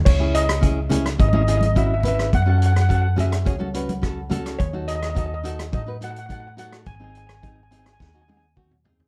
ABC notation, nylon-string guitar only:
X:1
M:4/4
L:1/16
Q:1/4=106
K:C#m
V:1 name="Nylon-string guitar"
z [CEG]2 z [CEG] z [CEG] z [CEG] [CEG] [CEG] z [CEF] z [CEB]2 | z [CFA]2 z [CFA] z [CFG] z [CFG] [CFA] [CFB] z [CFA] z [CFA]2 | z [DFA]2 z [DFA] z [DFA] z [DFA] [DFB] [DFA] z [DFA] z [DFA]2 | z [^B,DG]2 z [B,DG] z [B,DG] z [B,DG] [B,DF] [B,DG] z [B,DF] z [B,DG]2 |]